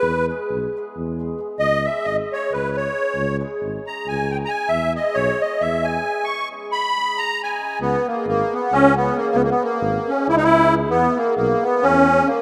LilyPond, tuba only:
\new Staff \with { instrumentName = "Tuba" } { \clef bass \time 7/8 \key cis \minor \tempo 4 = 135 e,4 b,,8 r8 e,4. | cis,4 gis,,8 r8 cis,4. | cis,4 gis,,8 r8 cis,4. | e,4 b,,8 r8 e,4. |
r2. r8 | cis,8 r8 gis,,8 r8 cis,4. | cis,8 r8 gis,,8 r8 cis,4. | e,8 r8 b,,8 r8 e,4. | }